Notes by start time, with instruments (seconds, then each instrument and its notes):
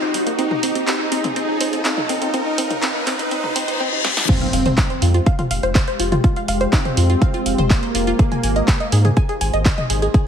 Already playing: ambient pad A#3 D#4 G4 C5, supersaw synth D#4, riser
0.02 synth arpeggio sound C5
0.14 synth arpeggio sound G3, open hi-hat
0.26 synth arpeggio sound A#3, closed hi-hat
0.38 synth arpeggio sound C4, ambient pad C#4 F4 C#5, supersaw synth D#4, closed hi-hat
0.51 synth arpeggio sound D#4, mid tom
0.63 synth arpeggio sound C4, open hi-hat
0.75 synth arpeggio sound C4, closed hi-hat
0.87 synth arpeggio sound C4, supersaw synth D#4, clap, closed hi-hat
1.00 synth arpeggio sound D#4
1.12 synth arpeggio sound C4, open hi-hat
1.24 synth arpeggio sound C4, closed hi-hat, mid tom
1.36 synth arpeggio sound C4, supersaw synth D#4, closed hi-hat
1.49 synth arpeggio sound D#4
1.61 synth arpeggio sound C4, open hi-hat
1.73 synth arpeggio sound C4, closed hi-hat
1.85 synth arpeggio sound C4, supersaw synth D#4, clap, closed hi-hat
1.97 synth arpeggio sound D#4, mid tom
2.09 synth arpeggio sound C4, open hi-hat
2.22 synth arpeggio sound C4, closed hi-hat
2.34 synth arpeggio sound C4, supersaw synth D#4, ambient pad D#5, closed hi-hat
2.46 synth arpeggio sound D#4
2.58 synth arpeggio sound C4, supersaw synth D#4, open hi-hat
2.70 synth arpeggio sound D#4, closed hi-hat, mid tom
2.82 synth arpeggio sound C4, supersaw synth D#4, clap, closed hi-hat
2.95 synth arpeggio sound D#4
3.07 synth arpeggio sound C4, supersaw synth D#4, clap, open hi-hat
3.19 synth arpeggio sound D#4, closed hi-hat
3.31 synth arpeggio sound C4, supersaw synth D#4, closed hi-hat, reverse cymbal
3.44 synth arpeggio sound D#4, mid tom
3.56 synth arpeggio sound C4, supersaw synth D#4, open hi-hat
3.68 synth arpeggio sound D#4, closed hi-hat
3.80 synth arpeggio sound C4
3.93 synth arpeggio sound D#4
4.04 synth arpeggio sound C4, snare
4.17 synth arpeggio sound D#4, snare
4.29 ambient pad G#3 F4 G4 C5, supersaw synth C4, synth arpeggio sound F4, kick, closed hi-hat, crash, impact
4.41 synth arpeggio sound F5, closed hi-hat
4.53 analog synth bass F1, synth arpeggio sound F5, open hi-hat
4.66 synth arpeggio sound C5, closed hi-hat, mid tom
4.78 synth arpeggio sound D#4, kick, clap, closed hi-hat
4.90 synth arpeggio sound C5, closed hi-hat
5.02 analog synth bass F2, synth arpeggio sound F4, open hi-hat
5.14 synth arpeggio sound F4, closed hi-hat
5.26 synth arpeggio sound F5, kick, closed hi-hat
5.39 synth arpeggio sound F4, closed hi-hat, mid tom
5.51 analog synth bass F1, synth arpeggio sound F5, open hi-hat
5.63 analog synth bass F1, synth arpeggio sound C5, closed hi-hat
5.75 synth arpeggio sound C5, kick, clap, closed hi-hat
5.88 synth arpeggio sound C5, closed hi-hat
6.00 analog synth bass F1, synth arpeggio sound F4, open hi-hat
6.12 synth arpeggio sound F4, closed hi-hat, mid tom
6.24 synth arpeggio sound F4, kick, closed hi-hat
6.36 synth arpeggio sound F5, closed hi-hat
6.48 analog synth bass F1, synth arpeggio sound F5, open hi-hat
6.61 synth arpeggio sound C5, closed hi-hat
6.73 supersaw synth C4, synth arpeggio sound D#4, kick, clap, closed hi-hat
6.85 synth arpeggio sound C5, closed hi-hat, mid tom
6.97 analog synth bass F2, synth arpeggio sound F4, open hi-hat
7.10 synth arpeggio sound F4, closed hi-hat
7.22 synth arpeggio sound F5, kick, closed hi-hat
7.34 synth arpeggio sound F4, closed hi-hat
7.46 analog synth bass F1, synth arpeggio sound F5, open hi-hat
7.58 analog synth bass F1, synth arpeggio sound C5, closed hi-hat, mid tom
7.70 supersaw synth A#3, synth arpeggio sound C5, kick, clap, closed hi-hat
7.83 synth arpeggio sound C5, closed hi-hat
7.95 analog synth bass F1, synth arpeggio sound F4, open hi-hat
8.07 synth arpeggio sound F4, closed hi-hat
8.19 supersaw synth A#3, ambient pad A#3 D#4 G#5, synth arpeggio sound G#4, kick, closed hi-hat
8.32 synth arpeggio sound G#5, closed hi-hat, mid tom
8.44 analog synth bass G#1, synth arpeggio sound G#5, open hi-hat
8.56 synth arpeggio sound D#5, closed hi-hat
8.68 synth arpeggio sound G4, kick, clap, closed hi-hat
8.80 synth arpeggio sound D#5, closed hi-hat
8.92 analog synth bass G#2, synth arpeggio sound G#4, open hi-hat
9.05 synth arpeggio sound G#4, closed hi-hat, mid tom
9.17 synth arpeggio sound G#5, kick, closed hi-hat
9.29 synth arpeggio sound G#4, closed hi-hat
9.41 analog synth bass G#1, synth arpeggio sound G#5, open hi-hat
9.53 analog synth bass G#1, synth arpeggio sound D#5, closed hi-hat
9.65 synth arpeggio sound D#5, kick, clap, closed hi-hat
9.78 synth arpeggio sound D#5, closed hi-hat, mid tom
9.90 analog synth bass G#1, synth arpeggio sound G#4, open hi-hat
10.02 synth arpeggio sound G#4, closed hi-hat
10.14 synth arpeggio sound G#4, kick, closed hi-hat